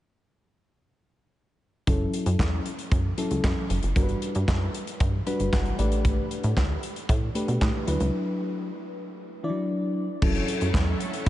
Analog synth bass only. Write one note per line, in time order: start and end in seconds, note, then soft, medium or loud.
1.87 2.08 F#1 loud
2.26 2.37 F#2 medium
2.39 2.60 E2 medium
2.92 3.12 F#2 loud
3.31 3.41 C#2 medium
3.44 3.54 F#2 loud
3.70 3.80 F#1 medium
3.83 3.93 F#1 medium
3.96 4.16 G1 medium
4.35 4.46 G2 loud
4.48 4.68 F#2 medium
5.00 5.21 G2 medium
5.40 5.50 G1 medium
5.53 5.73 G1 medium
5.79 6.20 A1 medium
6.44 6.54 A2 loud
6.57 6.77 D2 medium
7.09 7.30 A2 loud
7.48 7.58 B2 medium
7.61 7.71 A2 medium
7.88 7.98 D2 medium
8.01 8.11 C#2 medium
10.22 10.43 F#1 loud
10.62 10.72 F#2 medium
10.74 10.95 E2 medium